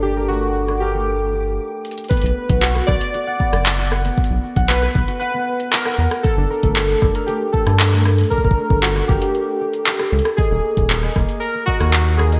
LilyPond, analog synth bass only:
\new Staff \with { instrumentName = "Analog synth bass" } { \clef bass \time 4/4 \key g \lydian \tempo 4 = 116 g,,2. r4 | r16 b,,16 r16 b,,8 r16 b,,16 r4 fis,,4 r16 | r16 b,,16 r16 b,,8 r16 b,,16 r4. r16 e,16 r16 | r16 g,,16 r16 g,,8 r16 g,,16 r4 g,4 r16 |
r16 g,,16 r16 g,,8 r16 g,,16 r4. r16 cis,16 r16 | r16 dis,,16 r16 dis,,8 r16 dis,,16 r4 dis,4 r16 | }